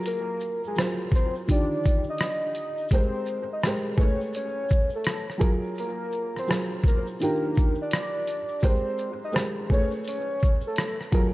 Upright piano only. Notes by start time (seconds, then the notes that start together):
Already playing: F#3 F4 G#4 A#4
0.76 F#3 F4 G#4 C5
1.47 D3 D#3 F4 G4
2.91 G#3 G4 A#4 C5
3.65 G#3 G4 A#4 C5
3.97 A3 G#4 B4 C#5
5.38 F#3 F4 G#4 A#4
6.47 F#3 F4 G#4 C5
7.20 D#3 D4 F4 G4
8.62 G#3 G4 A#4 C5
9.32 G#3 G4 A#4 C5
9.69 A3 G#4 B4 C#5
11.12 F#3 F4 G#4 A#4